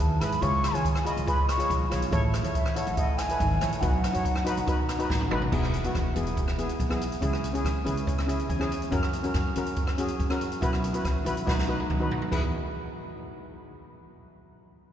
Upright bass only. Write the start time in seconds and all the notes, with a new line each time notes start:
0.00 D#2
0.21 G#2
0.42 C#2
0.74 G#1
1.17 C#2
1.70 B1
1.92 B1
2.12 A1
2.44 E2
2.87 A1
3.40 G#1
3.62 A#1
3.82 B1
4.15 F#2
4.57 B1
5.10 A1
5.32 A1
5.52 E1
5.95 E1
6.16 E1
6.80 B1
7.22 C#2
7.65 C#2
7.86 C#2
8.50 E2
8.92 F#2
9.34 F#2
9.56 F#2
10.19 F#2
10.62 B1
11.05 B1
11.26 B1
11.47 B1
11.90 B1
12.32 E2